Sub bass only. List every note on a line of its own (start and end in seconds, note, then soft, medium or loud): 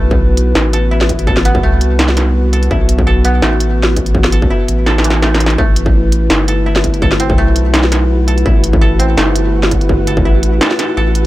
0.00 0.54 B1 loud
0.55 1.62 A1 loud
1.63 2.69 C2 loud
2.71 3.41 B1 loud
3.43 4.49 A1 medium
4.68 5.57 A1 medium
5.58 6.29 A1 loud
6.30 7.37 G1 loud
7.38 8.44 B1 medium
8.46 9.16 A1 loud
9.17 10.24 G1 loud
10.25 10.60 A1 loud
10.97 11.27 A1 loud